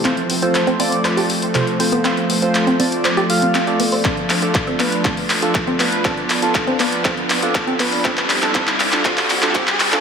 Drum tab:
HH |xxoxxxoxxooxxxox|xxoxxxoxxxoxxxoo|-xoxxxoxxooxxxox|xxoxxxoxxxoxxxoo|
CP |x---x---x---x---|x---x---x---x---|x-x-x-x-x-x-x-x-|x-x-x-x-x-x-x-x-|
BD |----------------|----------------|o---o---o---o---|o---o---o---o---|

HH |xxoxxxoxxooxxxox|
CP |xxxxxxxxxxxxxxxx|
BD |o---o---o---o---|